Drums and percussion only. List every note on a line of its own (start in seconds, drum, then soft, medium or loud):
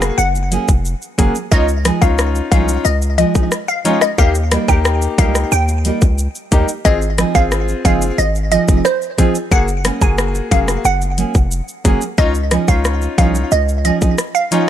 0.02 cross-stick medium
0.02 shaker medium
0.18 shaker medium
0.35 shaker medium
0.52 closed hi-hat medium
0.52 shaker soft
0.68 kick medium
0.68 shaker medium
0.85 shaker medium
1.02 shaker soft
1.19 kick medium
1.19 closed hi-hat medium
1.19 shaker medium
1.35 shaker medium
1.52 kick loud
1.52 shaker medium
1.68 shaker medium
1.85 cross-stick loud
1.85 closed hi-hat medium
1.85 shaker medium
2.02 kick medium
2.02 shaker medium
2.18 cross-stick loud
2.18 shaker medium
2.35 shaker medium
2.52 kick loud
2.52 closed hi-hat medium
2.52 shaker medium
2.69 shaker medium
2.85 shaker medium
3.02 shaker medium
3.18 closed hi-hat medium
3.18 shaker medium
3.35 kick medium
3.35 shaker medium
3.52 cross-stick medium
3.52 shaker medium
3.68 shaker soft
3.85 closed hi-hat medium
3.85 shaker medium
4.01 cross-stick medium
4.01 shaker medium
4.18 kick loud
4.18 shaker medium
4.35 shaker medium
4.51 cross-stick loud
4.51 closed hi-hat medium
4.51 shaker medium
4.68 kick medium
4.68 shaker medium
4.85 cross-stick loud
4.85 shaker medium
5.02 shaker medium
5.18 kick loud
5.18 closed hi-hat medium
5.18 shaker medium
5.35 cross-stick medium
5.35 shaker medium
5.52 shaker medium
5.68 shaker medium
5.85 closed hi-hat medium
5.85 shaker soft
6.01 kick medium
6.01 shaker medium
6.18 shaker medium
6.35 shaker soft
6.52 kick medium
6.52 closed hi-hat medium
6.52 shaker medium
6.68 shaker medium
6.85 kick loud
6.85 shaker medium
7.02 shaker medium
7.18 cross-stick loud
7.18 closed hi-hat medium
7.18 shaker medium
7.35 kick medium
7.35 shaker medium
7.51 cross-stick medium
7.51 shaker medium
7.68 shaker medium
7.85 kick loud
7.85 closed hi-hat medium
7.85 shaker medium
8.02 shaker medium
8.18 shaker medium
8.35 shaker soft
8.52 closed hi-hat medium
8.52 shaker soft
8.68 kick medium
8.68 shaker medium
8.85 cross-stick medium
8.85 shaker medium
9.02 shaker soft
9.18 kick medium
9.18 closed hi-hat medium
9.18 shaker medium
9.35 shaker medium
9.52 kick loud
9.52 shaker medium
9.68 shaker medium
9.85 cross-stick loud
9.85 closed hi-hat medium
9.85 shaker medium
10.01 kick medium
10.01 shaker medium
10.18 cross-stick loud
10.18 shaker medium
10.35 shaker medium
10.51 kick loud
10.51 closed hi-hat medium
10.51 shaker medium
10.68 cross-stick medium
10.68 shaker medium
10.85 shaker medium
11.02 shaker medium
11.18 closed hi-hat medium
11.18 shaker soft
11.34 kick medium
11.34 shaker medium
11.51 shaker medium
11.68 shaker soft
11.85 kick loud
11.85 closed hi-hat medium
11.85 shaker medium
12.01 shaker medium
12.18 kick loud
12.18 shaker medium
12.35 shaker medium
12.51 cross-stick loud
12.51 closed hi-hat medium
12.51 shaker medium
12.68 kick medium
12.68 shaker medium
12.85 cross-stick medium
12.85 shaker medium
13.02 shaker medium
13.18 kick medium
13.18 closed hi-hat medium
13.18 shaker medium
13.35 shaker medium
13.52 shaker medium
13.69 shaker soft
13.85 closed hi-hat medium
13.85 shaker medium
14.01 kick medium
14.01 shaker medium
14.18 cross-stick medium
14.18 shaker medium
14.35 shaker soft
14.52 closed hi-hat medium
14.52 shaker medium